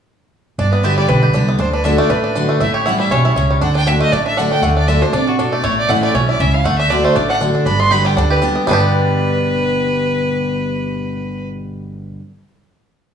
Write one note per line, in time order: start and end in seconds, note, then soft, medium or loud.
0.58 0.97 G1 medium
0.58 1.07 G2 medium
0.58 0.95 D4 medium
0.58 0.72 D5 medium
0.73 1.07 B3 medium
0.73 0.86 B4 soft
0.83 1.07 D3 medium
0.83 1.08 G3 medium
0.83 1.08 B3 loud
0.83 1.20 G4 medium
0.83 1.09 G4 medium
0.83 0.97 E5 medium
0.98 1.32 G3 medium
0.98 1.10 D5 medium
1.08 1.30 B1 medium
1.08 1.32 D3 medium
1.08 1.33 D4 medium
1.08 1.48 B4 medium
1.23 1.57 G4 medium
1.33 1.55 C2 medium
1.33 1.57 D3 medium
1.33 1.58 G3 medium
1.33 1.59 B3 medium
1.33 1.58 D4 medium
1.33 1.59 G4 medium
1.49 1.60 B3 medium
1.58 1.97 D2 loud
1.58 1.83 D3 medium
1.58 1.72 D4 medium
1.58 1.73 C5 medium
1.73 1.84 D4 medium
1.73 1.86 B4 medium
1.84 2.08 D3 medium
1.84 2.09 A3 medium
1.84 2.09 D4 medium
1.84 2.09 D4 loud
1.84 2.10 F#4 loud
1.84 1.98 E5 medium
1.98 2.48 A3 medium
1.98 2.12 D5 medium
2.10 2.48 A1 medium
2.10 2.58 A2 medium
2.10 2.23 D4 medium
2.10 2.49 B4 medium
2.24 2.34 D4 medium
2.35 2.60 D3 medium
2.35 2.60 A3 medium
2.35 2.61 D4 medium
2.35 2.60 D4 medium
2.35 2.61 F#4 medium
2.49 2.77 A3 medium
2.60 2.98 A1 medium
2.60 3.09 A2 medium
2.60 2.84 E4 medium
2.60 2.73 E5 medium
2.74 3.09 G4 medium
2.74 2.87 C#5 medium
2.86 3.10 E3 medium
2.86 3.11 G3 medium
2.86 3.11 C#4 medium
2.86 3.22 E4 medium
2.86 3.11 E4 loud
2.86 3.00 F#5 loud
3.00 3.34 G3 medium
3.00 3.13 E5 medium
3.11 3.32 B1 medium
3.11 3.36 B2 medium
3.11 3.35 C#4 medium
3.11 3.50 C#5 medium
3.25 3.59 E4 medium
3.36 3.58 C#2 medium
3.36 3.61 C#3 medium
3.36 3.62 C#4 medium
3.51 3.62 G3 medium
3.61 4.00 D2 medium
3.61 3.86 D3 medium
3.61 3.74 D4 medium
3.61 3.75 F#5 medium
3.75 3.86 D4 medium
3.75 3.89 G5 loud
3.87 4.11 D3 medium
3.87 4.11 A3 medium
3.87 4.11 D4 medium
3.87 4.12 D4 medium
3.87 4.12 F#4 medium
3.87 4.00 E5 medium
4.01 4.63 A3 medium
4.01 4.14 D#5 medium
4.12 4.50 A1 medium
4.12 4.61 A2 medium
4.12 4.25 D4 medium
4.12 4.26 D5 medium
4.26 4.36 D4 medium
4.26 4.40 E5 medium
4.37 4.62 D3 medium
4.37 4.62 A3 medium
4.37 4.50 D4 medium
4.37 4.63 D4 loud
4.37 4.63 F#4 medium
4.37 4.50 F#5 medium
4.51 4.75 D4 medium
4.51 4.64 G5 loud
4.62 5.01 D2 medium
4.62 4.87 D3 medium
4.62 5.52 A3 medium
4.62 4.77 F#5 medium
4.77 4.87 D4 medium
4.77 4.90 D5 medium
4.88 5.01 D3 medium
4.88 5.02 A3 medium
4.88 5.01 D4 medium
4.88 5.02 D4 medium
4.88 5.01 F#4 medium
4.88 5.04 E5 medium
5.02 5.12 D4 medium
5.02 5.14 D4 soft
5.02 5.13 F#4 medium
5.02 5.15 C5 medium
5.13 5.51 A1 medium
5.13 5.38 C3 medium
5.13 5.26 D4 medium
5.13 5.30 D5 medium
5.27 5.38 D4 medium
5.27 5.41 F#4 medium
5.39 5.63 B2 medium
5.39 5.64 D4 medium
5.39 5.54 A4 medium
5.52 5.63 A3 medium
5.52 5.66 D5 medium
5.63 5.83 A1 medium
5.63 6.12 A2 medium
5.63 6.00 A3 medium
5.63 5.78 C#5 medium
5.79 5.91 D5 loud
5.89 6.10 A1 medium
5.89 6.13 E3 medium
5.89 6.14 A3 medium
5.89 6.14 C#4 medium
5.89 6.26 E4 medium
5.89 6.14 E4 loud
5.89 6.03 F#5 loud
6.03 6.38 A3 medium
6.03 6.16 D5 medium
6.14 6.36 B1 medium
6.14 6.39 B2 medium
6.14 6.39 C#4 medium
6.14 6.28 C#5 medium
6.29 6.53 E4 medium
6.29 6.42 D5 medium
6.40 6.61 C#2 medium
6.40 6.64 C#3 medium
6.40 6.65 C#4 medium
6.40 6.56 E5 medium
6.54 6.65 E4 medium
6.54 6.66 F5 medium
6.65 7.03 D2 medium
6.65 6.89 D3 medium
6.65 7.02 A3 medium
6.65 6.78 F#5 medium
6.78 6.90 D4 medium
6.78 6.92 E5 loud
6.90 7.15 D3 medium
6.90 7.15 A3 medium
6.90 7.15 D4 medium
6.90 7.16 F#4 loud
6.90 7.06 D5 medium
7.04 7.39 A3 medium
7.04 7.17 C5 loud
7.15 7.54 A1 medium
7.15 7.64 A2 medium
7.15 7.30 D4 medium
7.15 7.29 D5 medium
7.29 7.41 D4 medium
7.29 7.36 F#5 loud
7.41 7.65 D3 medium
7.41 7.65 A3 medium
7.41 7.55 D4 medium
7.41 7.66 D4 medium
7.41 7.66 F#4 medium
7.55 7.66 D4 medium
7.66 8.04 G1 medium
7.66 8.15 G2 medium
7.66 8.03 D4 medium
7.66 7.81 B5 medium
7.80 8.14 B3 medium
7.80 7.93 C6 loud
7.91 8.16 D3 medium
7.91 8.16 G3 medium
7.91 8.17 B3 medium
7.91 8.28 G4 medium
7.91 8.17 G4 loud
7.91 8.08 B5 medium
8.05 8.40 G3 medium
8.05 8.18 G5 loud
8.16 8.55 D2 medium
8.16 8.40 D3 medium
8.16 8.41 D4 medium
8.16 8.30 F#5 medium
8.30 8.65 G4 medium
8.30 8.38 B4 medium
8.42 8.66 D3 medium
8.42 8.66 G3 medium
8.42 8.67 B3 medium
8.42 8.67 D4 medium
8.42 8.67 G4 loud
8.55 8.67 B3 medium
8.67 12.16 G1 loud
8.67 12.20 G2 medium
8.67 12.20 B2 medium
8.67 12.21 D3 medium
8.67 12.16 G3 medium
8.67 12.21 G3 medium
8.67 12.17 B3 medium
8.67 12.21 B3 medium
8.67 12.22 G4 medium
8.67 11.46 B4 medium
8.71 12.18 D4 medium
8.71 12.19 G4 medium